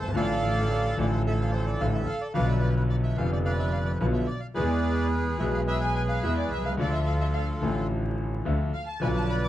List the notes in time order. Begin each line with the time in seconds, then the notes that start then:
Already playing: G1 A4 C5
0.01 G1 A5
0.08 G#1
0.13 A1 A2 D3 F3 A3 A4 D5 F5
0.17 F4
0.97 A1 A2 D3 F3 A3 F4 D5
1.13 C5
1.27 A4 E5
1.41 F5
1.51 C5 D5
1.66 D5
1.80 A1 A2 D3 F3 A3 F4 F5
1.95 E5
2.06 F5
2.21 D5
2.34 B1 B2 D3 F3 B3 F4 B4 D5 F5
2.48 E5
2.62 D5
2.76 B4
2.90 D5
3.03 E5
3.16 F1 F2 D3 F3 B3 F5
3.20 F4
3.32 D5
3.45 B4 D5 F5
3.59 E5
3.72 F5
3.85 D5
4.00 B1 B2 D3 F3 B3 F4 B4
4.13 E5
4.27 D5
4.40 F5
4.55 E2 E3 G#3 B3 G#4 B4 D5
5.38 B1 B2 E3 G#3 B3 E5
5.42 G#4
5.54 F5
5.67 G#4 B4 E5
5.81 G#5
5.96 G#5
6.09 F5
6.23 E2 E3 G#3 B3 G#4 E5
6.38 D5
6.51 C2 E5
6.58 B1
6.65 C2 F5
6.72 C#2
6.77 D2 D3 F3 A3 F4 A4 D5
6.81 F4
6.92 E5
7.07 F5
7.21 E5
7.34 F5
7.61 A1 A2 D3 F3 A3 F4
8.45 D2 D3 F3 A3 F4
8.73 F5
8.87 A5
9.00 B1 B2 D3 F3 B3 B4 D5 G#5
9.04 F4
9.15 A5
9.29 B5
9.44 D6